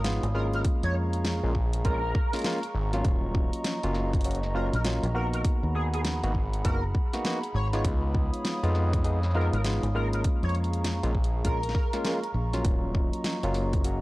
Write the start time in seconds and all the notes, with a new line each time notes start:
Already playing: G#1 C#5 F5 B5 D#6
0.04 G#3 B3 D#4 F4, snare, closed hi-hat
0.23 G#1, closed hi-hat
0.34 G#3 A#3 C#4 F4 A#4
0.53 A#4, closed hi-hat
0.64 G#4 A#5 C#6, kick, closed hi-hat
0.83 F2 C#5, closed hi-hat
1.13 closed hi-hat
1.25 snare, closed hi-hat
1.43 A#1 G#3 A#3 C#4 F4
1.55 kick
1.73 closed hi-hat
1.84 A#1 G#3 A#3 C#4 F4 A#4, kick, closed hi-hat
2.15 kick
2.33 G#3 A#3 C#4 F4, snare, closed hi-hat
2.36 closed hi-hat
2.39 closed hi-hat
2.42 snare, closed hi-hat
2.44 G#3 A#3 C#4 F4, closed hi-hat
2.49 closed hi-hat
2.54 closed hi-hat
2.58 closed hi-hat
2.63 closed hi-hat
2.75 G#1
2.93 F#3 A#3 C#4 F4, snare, closed hi-hat
3.05 D#1 F#3 D#5, kick, closed hi-hat
3.35 kick
3.53 closed hi-hat
3.64 snare, closed hi-hat
3.83 F#1 F#3 A#3 C#4 F4, closed hi-hat
3.95 snare
4.13 kick, closed hi-hat
4.21 closed hi-hat
4.24 F#3 A#3 C#4 F#4, closed hi-hat
4.31 closed hi-hat
4.35 closed hi-hat
4.43 snare
4.55 F#3 A#3 C#4 F4 A#4
4.73 A#1 A#4, closed hi-hat
4.85 F#3 A#3 C#4 F4, snare, closed hi-hat
5.03 A#1, closed hi-hat
5.15 A#3 B3 D#4 F#4 A#4
5.34 A#4, closed hi-hat
5.45 G#4 F#5 B5, kick, closed hi-hat
5.63 D#2
5.75 G#4
5.93 G#4, closed hi-hat
6.05 snare, closed hi-hat
6.23 G#1 A#3 B3 D#4 F#4, closed hi-hat
6.35 kick
6.53 closed hi-hat
6.65 F#1 A#3 B3 D#4 F#4 A#4, kick, closed hi-hat
6.95 kick
7.13 A#3 B3 D#4 F#4, snare, closed hi-hat
7.25 A#3 B3 D#4 F#4, snare, closed hi-hat
7.43 closed hi-hat
7.54 G#1 C#5
7.73 G#3 B3 D#4 F4 C#5, snare, closed hi-hat
7.85 C#2 C#5 F5 D#6, kick, closed hi-hat
8.15 kick
8.34 closed hi-hat
8.45 snare, closed hi-hat
8.63 F2 G#3 B3 D#4 F4, closed hi-hat
8.75 snare
8.93 kick, closed hi-hat
9.04 G#3 B3 D#4 G#4, closed hi-hat
9.23 snare
9.31 snare
9.35 G#3 B3 D#4 F4 A#4, snare
9.41 snare
9.45 snare
9.53 G#1 A#4, closed hi-hat
9.64 G#3 B3 D#4 F4, snare, closed hi-hat
9.83 G#1, closed hi-hat
9.95 G#3 A#3 C#4 F4 A#4
10.13 A#4, closed hi-hat
10.24 G#4 A#5 C#6, kick, closed hi-hat
10.43 F2 C#5, closed hi-hat
10.49 closed hi-hat
10.55 closed hi-hat
10.64 closed hi-hat
10.73 closed hi-hat
10.84 snare, closed hi-hat
11.03 A#1 G#3 A#3 C#4 F4, closed hi-hat
11.15 kick
11.24 closed hi-hat
11.45 A#1 G#3 A#3 C#4 F4 A#4, kick, closed hi-hat
11.63 closed hi-hat
11.69 snare
11.75 kick
11.93 G#3 A#3 C#4 F4, snare, closed hi-hat
12.05 G#3 A#3 C#4 F4, snare, closed hi-hat
12.23 closed hi-hat
12.34 A#1
12.53 F#3 A#3 C#4 F4, snare, closed hi-hat
12.64 D#1 F#3 D#5, kick, closed hi-hat
12.95 kick
13.13 closed hi-hat
13.24 snare, closed hi-hat
13.43 F#1 F#3 A#3 C#4 F4, closed hi-hat
13.54 snare, open hi-hat
13.73 kick, closed hi-hat
13.84 F#3 A#3 C#4 F#4, closed hi-hat